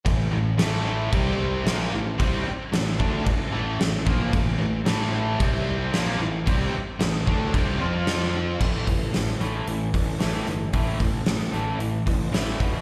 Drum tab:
CC |x-x-x-x-|x-x-x-x-|x-x-x-x-|x-x-x-x-|
HH |--------|--------|--------|--------|
SD |--o---o-|--o---o-|--o---o-|--o---o-|
BD |o---o---|o--oo--o|o---o---|o--oo---|

CC |x-------|--------|
HH |-ooooooo|oooooooo|
SD |--o---o-|--o---o-|
BD |oo---o--|oo---o-o|